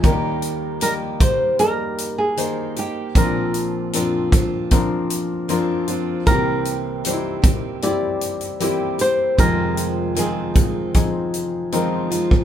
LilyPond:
<<
  \new Staff \with { instrumentName = "Nylon-string guitar" } { \time 4/4 \key ees \major \tempo 4 = 77 r4 bes'8 c''8 bes'8. aes'8. g'8 | bes'2 r2 | bes'2 d''4. c''8 | bes'4 aes'2 r4 | }
  \new Staff \with { instrumentName = "Grand piano" } { \time 4/4 \key ees \major <g bes ees' bes'>4 <g bes ees' bes'>4 <g bes ees' bes'>4 <bes ees' c''>4 | <f c' d' bes'>4 <f c' d' bes'>4 <f c' d' bes'>4 <f c' d' bes'>4 | <g c' e' bes'>4 <g c' ees' e' c''>4 <g c' e' g'>4 <g c' e' g'>4 | <f c' ees' aes'>4 <f c' ees' bes'>4 <f c' ees' aes'>4 <f c' ees' bes'>4 | }
  \new Staff \with { instrumentName = "Grand piano" } { \clef bass \time 4/4 \key ees \major <ees, ees>1 | <bes,, bes,>1 | <c, c>1 | <f,, f,>1 | }
  \new Staff \with { instrumentName = "Steel-string acoustic guitar" } { \time 4/4 \key ees \major <ees bes ees' g'>4 <ees bes ees' g'>8 <bes ees' g'>4. <ees bes ees'>8 <bes ees' g'>8 | <bes, f c' d' f'>4 <f c' d' f'>8 <c' d' f'>4. <f c' d' f'>8 <c' d' f'>8 | <c e bes c' g'>4 <e bes c' g'>8 <bes c' g'>4. <e bes c' g'>8 <bes c' g'>8 | <f, c ees aes c' f'>4 <ees aes c' f'>8 <ees aes c' f'>4. <ees aes c' f'>8 <ees aes c' f'>8 | }
  \new DrumStaff \with { instrumentName = "Drums" } \drummode { \time 4/4 <hh bd>8 hh8 hh8 <hh bd>8 hh8 hh8 hh8 hh8 | <hh bd>8 hh8 hh8 <hh bd>8 <hh bd>8 hh8 hh8 hh8 | <hh bd>8 hh8 hh8 <hh bd>8 hh8 hh16 hh16 hh8 hh8 | <hh bd>8 hh8 hh8 <hh bd>8 <hh bd>8 hh8 hh8 hh16 bd16 | }
>>